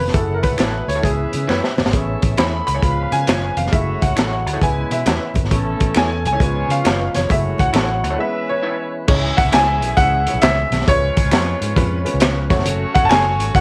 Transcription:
Already playing: F3 C#4 B4
0.00 F1
0.08 snare
0.13 F#1 F#3 A3 C#4 E4 F#4 G#4 A4 F#5, kick, closed hi-hat, muted conga
0.34 A#4
0.43 B4, kick, closed hi-hat, muted conga
0.51 C#2
0.58 A1 E4 A4 C#5, finger snap, snare, closed hi-hat, high conga
0.88 D2 C#5, closed hi-hat
0.95 E4 A4 C#5
1.02 C#2 E3 G#3 B3 C#4 E4 G#4 B4 E5, kick, closed hi-hat
1.33 C#3, closed hi-hat, muted conga
1.47 F#2 E4 B4 C#5, finger snap, snare, high conga
1.64 snare
1.78 F#1, snare, high conga
1.85 G#1, snare
1.92 A1 A3 B3 C#4 E4 G#4 A4 C#5 E5, kick, closed hi-hat, muted conga
2.22 A1, kick, closed hi-hat, muted conga
2.37 E2 E4 G#4 C#5 B5, finger snap, snare, closed hi-hat, high conga
2.67 C#2 B5, closed hi-hat
2.74 E4 G#4 C#5
2.82 C#2 F3 G#3 B3 C#4 F4 B4 F5, kick, closed hi-hat, muted conga
3.03 B5
3.12 C#3 G#5, closed hi-hat, muted conga
3.27 F#1 F4 B4 C#5, finger snap, snare, closed hi-hat, high conga
3.57 F1 F5, closed hi-hat, high conga
3.67 snare
3.71 F#1 F#3 G#3 A3 C#4 E4 F#4 C#5 E5, kick, closed hi-hat, muted conga
4.02 C#2 F#5, kick, closed hi-hat, muted conga
4.16 A1 E4 A4 C#5, finger snap, snare, closed hi-hat, high conga
4.46 D2, closed hi-hat
4.53 E4 A4 C#5
4.61 C#2 E3 G#3 B3 C#4 E4 B4 G#5, kick, closed hi-hat, muted conga
4.91 B2 E5, closed hi-hat, muted conga
5.06 E2 E4 B4 C#5, finger snap, snare, closed hi-hat, high conga
5.34 F#1, kick, closed hi-hat, high conga
5.43 G#1, snare
5.50 A1 E3 A3 B3 C#4 A4, kick, closed hi-hat, muted conga
5.80 A1, kick, closed hi-hat, muted conga
5.95 E2 E4 G#4 C#5 G#5, finger snap, snare, closed hi-hat, high conga
6.25 C#2 G#5, closed hi-hat
6.33 E4 G#4 C#5
6.39 C#2 F3 G#3 B3 C#4 F4 B4 C#5, kick, closed hi-hat
6.68 C#3 F5, closed hi-hat, muted conga
6.84 F#1 F4 B4 C#5, finger snap, snare, closed hi-hat, high conga
7.14 F1 C#5, snare, closed hi-hat, high conga
7.29 F#1 F#3 G#3 A3 C#4 E4 F#4 C#5 E5, kick, closed hi-hat, muted conga
7.58 C#2 F#5, kick, closed hi-hat, muted conga
7.73 A1 E4 A4 C#5, finger snap, snare, closed hi-hat, high conga
8.03 D2, closed hi-hat
8.10 E4 A4 C#5
8.18 E3 G#3 B3 C#4 E4 B4 E5
8.49 C#5
8.63 E4 B4 C#5
9.07 C#2 E3 G#3 C#4 D#4 E4 G#4 C#5 E5, kick, crash, muted conga
9.14 E4
9.37 F#5, kick, closed hi-hat, muted conga
9.45 C#2
9.52 C#2 E4 G#4 C#5 G#5, finger snap, snare, closed hi-hat, high conga
9.82 B1, closed hi-hat
9.97 C#2 G#3 C#4 E4 G#4 F#5, kick, closed hi-hat, muted conga
10.27 G#3 C#4 E4 C#5, closed hi-hat, muted conga
10.34 B1
10.42 C#2 E4 G#4 C#5 E5, finger snap, snare, closed hi-hat, high conga
10.71 B1, snare, closed hi-hat, high conga
10.81 snare
10.86 C#2 F3 G#3 C#4 F4 B4 C#5, kick, closed hi-hat, muted conga
11.17 kick, closed hi-hat, muted conga
11.24 C#2
11.31 F2 F4 B4 C#5, finger snap, snare, closed hi-hat, high conga
11.61 G#2, closed hi-hat
11.76 F2 G#3 C#4 F4 B4, kick, closed hi-hat, low conga
12.05 G#3 C#4 F4 B4, closed hi-hat, muted conga
12.14 C#2
12.20 F4 B4 C#5, finger snap, snare, closed hi-hat, high conga
12.49 F#1 F#3 A3 C#4 F#4 A4 C#5, kick, snare, closed hi-hat, high conga
12.59 snare
12.66 closed hi-hat, muted conga
12.95 F#5, kick, closed hi-hat, muted conga
13.03 F#1 A5
13.09 F#1 F#4 A4 C#5 G#5, finger snap, snare, closed hi-hat, high conga
13.39 G#1, closed hi-hat
13.54 F#1 A3 C#4 F#4 C#5 F#5, kick, closed hi-hat, muted conga

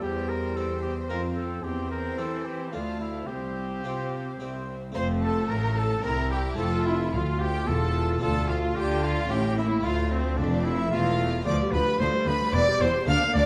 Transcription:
Already playing: G3
0.02 E2 G4 C5 G5
0.29 A#4
0.56 C4 G4 A4
0.82 G4
1.09 F2 C4 F4 A#4 F5
1.36 A4
1.63 E2 C4 G4 C5 G5
1.91 A#4
2.18 E3 C4 G4 A4
2.45 G4
2.72 D2 A3 D4 F4 F5 A5
3.00 E4
3.27 C2 C4 G4 C5 F5
3.84 C3 C4 F4 G4
4.40 C2 C4 E4 G4 C5 E5
4.92 F1 F2 A3 C4 F4 C5 C6
4.97 A3
5.22 A4 A5
5.48 A1 A2 A#4 A#5
5.76 A4 A5
6.02 C2 C4 E4 A#4 A#5
6.30 G4 G5
6.55 A3 C4 F4 A4 A5
6.59 F1 F2
6.84 E4 E5
7.12 D2 F4 F5
7.39 G4 G5
7.67 E1 E2 F4 A4 A5
8.18 D2 A3 D4 F4 A4 A5
8.23 D2 F4
8.48 F4 F5
8.76 D2 D3 G4 G5
9.03 F4 F5
9.26 A3 C#4 E4
9.30 A1 A2 C#4 G4 G5
9.57 A#3 E4 E5
9.81 D2 A3 D4 F4
9.85 D2 F5
10.11 C4 C5
10.38 F1 F2 A3 D4 D5
10.64 E4 E5
10.91 E1 E2 A3 F4 F5
11.43 D2 F3 B3 F4 D5
11.47 D6
11.60 G3
11.72 D2 F3 B4 B5
11.87 G3
11.99 D2 F3 C5 C6
12.13 G3
12.26 D2 F3 B4 B5
12.40 G3
12.51 E1 E2 E3 C4 G4 D5 D6
12.67 G3
12.80 E1 E2 E3 C5 C6
12.94 G3
13.05 D2 A#3 D4 A#4 F5 F6
13.21 A#3
13.34 D2 D4 D5 D6

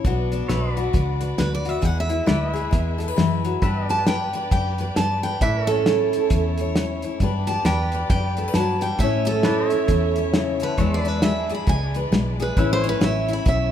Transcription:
Already playing: A5
0.04 B1 B2 B3 D4 F#4 B4 D5, kick, closed hi-hat
0.32 D4, closed hi-hat
0.48 B1 B3 B4 C#5 E5, snare, closed hi-hat
0.73 F#4 B4 D5, closed hi-hat
0.93 C#2 F#3, kick, closed hi-hat
1.21 B4, closed hi-hat
1.38 D2 B3 B4, snare, closed hi-hat
1.55 D5
1.65 F#4 E5, closed hi-hat
1.82 E2 E3 G#3 E4 G#4 E5 F#5, kick, closed hi-hat
2.00 E5
2.09 E4, closed hi-hat
2.26 D2 G#3 B4 D5, snare, closed hi-hat
2.53 G#4 E5, closed hi-hat
2.71 E2 B2, kick, closed hi-hat
2.98 A4, closed hi-hat
3.08 B4
3.16 F#2 E3, snare, closed hi-hat
3.45 F#3, closed hi-hat
3.62 G2 G3 D4 G4 B4 D5 E5, kick, closed hi-hat
3.88 G4 D5 A5, closed hi-hat
4.07 D4 B4 G5, snare, closed hi-hat
4.33 B4, closed hi-hat
4.51 F#2 D3 G5, kick, closed hi-hat
4.78 B4, closed hi-hat
4.96 G2 D4 A5, snare, closed hi-hat
5.23 B4 G5, closed hi-hat
5.41 A2 A3 C#4 E4 A4 B4 C#5 D5 E5, kick, closed hi-hat
5.63 A4 C#5
5.68 C#4 A4, closed hi-hat
5.86 A3 E4, snare, closed hi-hat
6.13 E4, closed hi-hat
6.30 E2 E3, kick, closed hi-hat
6.58 C#5, closed hi-hat
6.76 A3, snare, closed hi-hat
7.02 E4, closed hi-hat
7.20 G2 G3 B3 D4 G4 B4 D5, kick, closed hi-hat
7.47 G4 A5, closed hi-hat
7.65 E2 D4 B4 D5 G5, snare, closed hi-hat
7.92 B4, closed hi-hat
8.10 F#2 D3 G5, kick, closed hi-hat
8.37 A4, closed hi-hat
8.48 B4
8.54 G2 F#3 A5, snare, closed hi-hat
8.81 G3 G5, closed hi-hat
8.99 A2 A3 C#4 E4 C#5 E5, kick, closed hi-hat
9.03 E4 C#5
9.25 C#4 A4, closed hi-hat
9.43 A3 E4 B4 D5, snare, closed hi-hat
9.70 E4 C#5 E5, closed hi-hat
9.88 E2 E3, kick, closed hi-hat
10.16 C#5, closed hi-hat
10.34 C#3, snare, closed hi-hat
10.60 D3 B4, closed hi-hat
10.78 E2 E3 G#3 D4 E4 G#4 B4 C#5 D5 E5, kick, closed hi-hat
10.94 D5
11.03 D4 B4, closed hi-hat
11.08 B4
11.22 G#3 G#4 E5, snare, closed hi-hat
11.49 G#4, closed hi-hat
11.55 B5
11.67 C#2 B2 G#5, kick, closed hi-hat
11.94 B4, closed hi-hat
12.12 B1 G#3, snare, closed hi-hat
12.40 G#4 B4, closed hi-hat
12.57 A1 A2 A3 C#4 E4 B4 C#5 E5, kick, closed hi-hat
12.73 C5
12.83 C#4 C#5, closed hi-hat
12.89 B4
13.01 A1 A3 E4 E5, snare, closed hi-hat
13.28 E4, closed hi-hat
13.33 B5
13.45 B1 E3 E5, kick, closed hi-hat

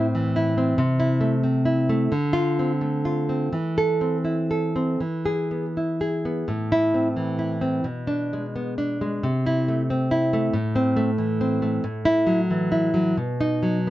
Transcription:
Already playing: A2 C4
0.15 E3
0.36 E4
0.58 C4
0.78 C3
1.00 E4
1.21 A3
1.44 C4
1.65 E4
1.89 A3
2.12 D3
2.33 F4
2.59 C4
2.81 A3
3.05 F4
3.29 C4
3.53 E3
3.78 A4
4.01 C4
4.25 E4
4.51 A4
4.76 C4
5.00 E3
5.26 G#4
5.51 B3
5.77 E4
6.01 G#4
6.25 B3
6.48 A2
6.72 E4
6.94 C4
7.16 E3
7.39 E4
7.61 C4
7.84 B2
8.07 D4
8.33 G#3
8.56 B3
8.78 D4
9.01 G#3
9.23 C3
9.46 E4
9.68 A3
9.90 C4
10.11 E4
10.33 A3
10.53 A2
10.76 C4
10.96 A3
11.18 E3
11.41 C4
11.62 A3
11.84 A2
12.05 E4
12.27 F#3
12.51 E3
12.72 E4
12.94 F#3
13.17 B2
13.41 D#4
13.63 F#3

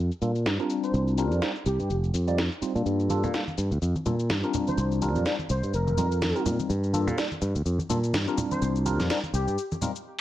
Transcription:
0.11 shaker
0.22 A#2 G3 A#3 D4 F4 A4, shaker
0.35 shaker
0.46 G2, snare, shaker
0.59 G3 C4 D4 F4 A#4, shaker
0.70 shaker
0.83 C5, shaker
0.94 C2, shaker
1.07 shaker
1.18 G3 C4 D4 F4 A#4, shaker
1.31 F2, shaker
1.42 G3 C4 D4 F4 A#4, snare, shaker
1.56 shaker
1.66 C2 G4, shaker
1.79 G2, shaker
1.90 F1, shaker
2.04 shaker
2.14 F2, shaker
2.27 G3 C4 D#4 F4 D5, shaker
2.38 snare, shaker
2.52 shaker
2.62 G3 C4 D#4 F4 C5, muted fingered electric bass stroke, shaker
2.75 A#2 G3 A#3 D4 F4 A4, shaker
2.86 G2, shaker
3.00 shaker
3.09 G3 A#3 D4 F4 A4, high conga, shaker
3.23 A#2, low conga, shaker
3.33 G3 A#3 D4 F4 A4, snare, shaker
3.47 high conga, shaker
3.58 G2, shaker
3.71 D2, shaker
3.82 F2, shaker
3.95 high conga, shaker
4.05 A#2 G3 A#3 D4 F4 A4, low conga, shaker
4.19 shaker
4.30 G2, snare, high conga, shaker
4.43 G3 C4 D4 F4 A#4, shaker
4.54 low conga, shaker
4.67 C5, high conga, shaker
4.78 C2, shaker
4.91 shaker
5.01 G3 C4 D4 F4 A#4, high conga, shaker
5.15 F2, low conga, shaker
5.26 G3 C4 D4 F4 A#4, snare, shaker
5.39 high conga, shaker
5.50 C2 C5, shaker
5.63 G2, shaker
5.74 F1 A#4, shaker
5.87 high conga, shaker
5.97 F2 G3 C4 D#4 F4 A#4, low conga, shaker
6.12 shaker
6.21 snare, high conga, shaker
6.35 G3 C4 D#4 F4 A#4, shaker
6.46 A#2, low conga, shaker
6.59 high conga, shaker
6.69 G2, shaker
6.84 shaker
6.93 G3 A#3 D4 F4 A4, high conga, shaker
7.07 A#2, low conga, shaker
7.17 G3 A#3 D4 F4 A4, snare, shaker
7.31 high conga, shaker
7.41 G2, shaker
7.55 D2, shaker
7.66 F2, shaker
7.79 high conga, shaker
7.89 A#2 G3 A#3 D4 F4 A4, low conga, shaker
8.03 shaker
8.13 G2, snare, high conga, shaker
8.27 G3 C4 D4 F4 A#4, shaker
8.38 low conga, shaker
8.51 C5, high conga, shaker
8.62 C2, shaker
8.76 shaker
8.85 G3 C4 D4 F4 A#4, high conga, shaker
8.99 F2, snare, low conga, shaker
9.10 G3 C4 D4 F4 A#4, snare, shaker
9.23 high conga, shaker
9.33 C2 G4, shaker
9.47 G2, shaker
9.58 shaker
9.71 high conga, shaker
9.81 G3 C4 D#4 F4 A#4, low conga, shaker
9.96 shaker

